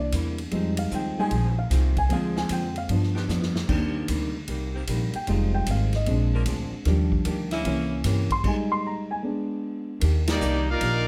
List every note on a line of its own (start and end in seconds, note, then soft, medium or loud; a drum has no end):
0.00 0.11 C2 medium
0.00 0.48 E3 soft
0.00 0.49 A#3 soft
0.00 0.49 D4 soft
0.00 0.12 D5 medium
0.12 0.51 E2 medium
0.12 0.40 C3 medium
0.12 0.40 G3 medium
0.12 0.41 A#3 medium
0.12 0.41 E4 medium
0.12 kick soft
0.12 hi-hat pedal medium
0.12 ride medium
0.38 ride soft
0.51 0.90 F2 medium
0.51 0.79 F3 medium
0.51 1.14 G3 soft
0.51 1.15 G#3 soft
0.51 0.80 C4 medium
0.51 1.15 D#4 medium
0.51 0.81 D#4 medium
0.51 kick soft
0.51 ride medium
0.55 0.81 G#4 medium
0.77 0.92 F5 medium
0.77 ride medium
0.91 1.16 D#2 medium
0.91 1.19 F3 medium
0.91 1.19 C4 medium
0.91 1.20 D#4 medium
0.91 1.20 G#4 medium
0.91 1.19 G5 medium
0.91 kick soft
0.91 hi-hat pedal medium
1.17 1.69 F3 loud
1.17 1.30 G3 soft
1.17 1.31 G#3 soft
1.17 1.69 C4 medium
1.17 1.69 D#4 medium
1.17 1.31 D#4 medium
1.17 1.68 G#4 loud
1.17 1.56 G#5 medium
1.17 muted upright bass stroke soft
1.31 1.69 A#1 medium
1.31 1.59 F3 soft
1.31 1.59 C4 soft
1.31 1.60 D#4 soft
1.31 1.60 G#4 soft
1.31 kick soft
1.31 ride medium
1.59 1.66 F5 medium
1.70 2.09 C2 medium
1.70 1.98 F3 medium
1.70 1.99 C4 medium
1.70 1.99 D#4 medium
1.70 1.99 G#4 medium
1.70 kick soft
1.70 snare soft
1.70 hi-hat pedal medium
1.70 ride medium
1.97 2.11 G#5 medium
1.97 kick medium
1.97 ride soft
2.09 2.49 D2 medium
2.09 2.38 D3 soft
2.09 2.85 F3 soft
2.09 2.71 F3 medium
2.09 2.86 G#3 soft
2.09 2.86 C4 medium
2.09 2.71 C4 medium
2.09 2.39 C4 medium
2.09 2.71 D4 medium
2.09 2.39 F4 medium
2.09 2.71 G#4 loud
2.09 2.37 F5 medium
2.09 ride medium
2.14 2.40 G#4 medium
2.36 2.50 G#5 medium
2.36 snare medium
2.49 2.88 F2 medium
2.49 2.77 D3 medium
2.49 2.78 C4 medium
2.49 2.78 F4 medium
2.49 2.79 G#4 medium
2.49 2.77 G5 medium
2.49 kick soft
2.49 hi-hat pedal medium
2.49 ride medium
2.76 2.90 F5 medium
2.76 ride soft
2.88 3.17 G2 soft
2.88 3.28 G2 medium
2.88 3.17 F3 soft
2.88 3.52 F3 soft
2.88 3.52 B3 soft
2.88 3.18 B3 soft
2.88 3.53 D4 medium
2.88 3.18 D4 soft
2.88 kick soft
2.88 ride medium
3.03 snare soft
3.14 3.24 F3 medium
3.14 3.24 B3 medium
3.14 3.24 D4 medium
3.14 3.25 G4 medium
3.14 snare soft
3.28 3.67 F2 medium
3.28 3.56 G2 medium
3.28 3.57 F3 medium
3.28 3.57 B3 medium
3.28 3.58 D4 medium
3.28 snare medium
3.28 hi-hat pedal medium
3.42 snare medium
3.55 snare medium
3.68 4.07 D#2 medium
3.68 3.96 C3 soft
3.68 4.32 D#3 soft
3.68 4.30 D#3 medium
3.68 3.97 G3 medium
3.68 4.30 A#3 medium
3.68 4.32 A#3 soft
3.68 3.97 A#3 medium
3.68 4.30 C4 medium
3.68 4.32 D4 medium
3.68 3.98 D#4 medium
3.68 4.30 G4 medium
3.68 kick medium
3.68 crash medium
4.08 4.47 D2 medium
4.08 4.36 C3 medium
4.08 4.36 G3 medium
4.08 4.37 A#3 medium
4.08 4.37 D#4 medium
4.08 kick soft
4.08 hi-hat pedal medium
4.08 ride medium
4.48 4.87 C2 medium
4.48 4.75 C3 soft
4.48 4.76 G3 medium
4.48 4.77 A#3 medium
4.48 4.77 D#4 medium
4.48 kick soft
4.48 ride medium
4.74 4.84 D#3 medium
4.74 4.84 A#3 medium
4.74 4.84 C4 medium
4.74 4.84 G4 medium
4.87 5.12 A#1 medium
4.87 5.16 C3 medium
4.87 5.16 G3 medium
4.87 5.16 A#3 medium
4.87 5.17 D#4 medium
4.87 kick soft
4.87 hi-hat pedal medium
4.87 ride medium
5.13 5.28 G5 medium
5.13 muted upright bass stroke soft
5.13 ride soft
5.27 5.66 F1 medium
5.27 5.55 F2 soft
5.27 5.56 D#3 soft
5.27 5.88 F3 medium
5.27 5.90 G3 medium
5.27 5.90 G#3 soft
5.27 5.56 G#3 medium
5.27 5.88 C4 medium
5.27 5.57 C4 medium
5.27 5.88 D#4 medium
5.27 5.91 D#4 medium
5.27 5.88 F4 medium
5.27 5.55 D#5 medium
5.27 kick soft
5.27 ride medium
5.54 5.67 G5 medium
5.66 6.05 G#1 medium
5.66 5.95 F2 medium
5.66 5.95 D#3 medium
5.66 5.96 G#3 medium
5.66 5.96 C4 medium
5.66 kick soft
5.66 hi-hat pedal medium
5.66 ride medium
5.71 5.94 F5 medium
5.93 6.08 D#5 medium
5.93 snare soft
5.93 ride soft
6.06 6.45 A#1 medium
6.06 6.34 A#2 soft
6.06 6.35 F3 soft
6.06 6.82 G#3 soft
6.06 6.35 G#3 soft
6.06 6.83 C4 soft
6.06 6.83 D4 soft
6.06 kick soft
6.06 ride medium
6.10 6.36 D4 soft
6.34 6.43 F3 medium
6.34 6.43 A#3 medium
6.34 6.43 D4 medium
6.34 6.43 A#4 loud
6.46 6.70 D2 medium
6.46 6.74 A#2 medium
6.46 6.74 F3 medium
6.46 6.75 G#3 medium
6.46 6.75 D4 medium
6.46 kick soft
6.46 hi-hat pedal medium
6.46 ride medium
6.71 muted upright bass stroke soft
6.85 7.24 D#2 medium
6.85 7.13 D#3 medium
6.85 7.62 F3 medium
6.85 7.62 G3 soft
6.85 7.14 A#3 medium
6.85 7.14 D4 medium
6.85 7.62 D4 medium
6.85 7.15 G4 medium
6.85 kick soft
6.85 snare soft
6.85 ride medium
7.12 kick medium
7.25 7.64 D2 medium
7.25 7.53 D#3 medium
7.25 7.53 A#3 medium
7.25 7.53 D4 medium
7.25 7.54 G4 medium
7.25 kick soft
7.25 hi-hat pedal medium
7.25 ride medium
7.51 8.02 A#3 loud
7.51 8.02 C#4 loud
7.51 8.02 E4 loud
7.51 snare soft
7.51 ride medium
7.64 8.03 C2 medium
7.64 7.92 C3 medium
7.64 7.92 E3 medium
7.64 8.41 E3 soft
7.64 7.93 A#3 medium
7.64 8.41 A#3 soft
7.64 8.41 C#4 medium
7.64 7.94 C#4 medium
7.64 kick soft
7.64 ride medium
8.04 8.43 G2 medium
8.04 8.32 C3 medium
8.04 8.32 E3 medium
8.04 8.33 A#3 medium
8.04 8.33 C#4 medium
8.04 kick soft
8.04 snare soft
8.04 hi-hat pedal medium
8.04 ride medium
8.30 8.45 C6 medium
8.30 kick medium
8.30 ride soft
8.44 9.19 G3 medium
8.44 9.20 G#3 soft
8.44 9.20 D#4 medium
8.44 8.71 G#5 medium
8.44 kick medium
8.44 crash medium
8.72 8.84 C6 medium
8.87 9.10 A#5 medium
9.11 9.19 G#5 medium
9.23 9.98 G#3 soft
9.23 9.99 B3 soft
9.23 9.99 D4 medium
10.00 10.40 D#2 medium
10.00 10.29 D#3 medium
10.00 10.29 A#3 medium
10.00 10.30 D4 medium
10.00 10.30 G4 medium
10.00 kick soft
10.00 ride medium
10.27 10.65 G3 medium
10.27 10.65 A#3 medium
10.27 10.66 A#3 medium
10.27 10.65 D#4 medium
10.27 10.66 D#4 medium
10.27 10.66 G4 medium
10.27 10.66 D5 medium
10.27 snare loud
10.27 ride medium
10.41 10.80 C2 medium
10.41 10.69 D#3 medium
10.41 10.69 A#3 medium
10.41 10.70 D4 medium
10.41 10.70 G4 medium
10.41 hi-hat pedal medium
10.70 11.08 A#3 medium
10.70 11.08 D#4 medium
10.70 11.08 F4 medium
10.70 11.08 A#4 medium
10.70 11.08 D5 loud
10.70 11.08 F5 loud
10.81 11.08 A#1 medium
10.81 11.08 D#3 medium
10.81 11.08 A#3 soft
10.81 11.08 D4 medium
10.81 11.08 G4 medium
10.81 kick soft
10.81 ride medium